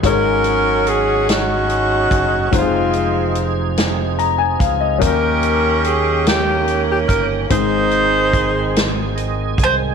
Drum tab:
HH |xxxxxx|xxxxxx|xxxxxx|xxxxxx|
SD |---o--|---o--|---o--|---o--|
BD |o----o|o----o|o----o|o-o--o|